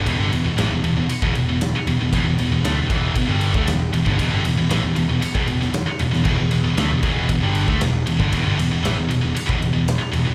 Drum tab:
CC |----------------|----------------|----------------|x---------------|
RD |x-x-x-x-x-x-x-x-|x-x-x-x-x-x-x-x-|x-x-x-x-x-x-x-x-|--x-x-x-x-x-x-x-|
SD |----o-------o---|----o-------o---|----o------oo--o|----o-------o---|
BD |o--------o------|o-----o-o--o---o|o--------o------|o-----o-o--o---o|

CC |----------------|
RD |x-x-x-x-x-x-x-x-|
SD |----o-------o---|
BD |o--------o------|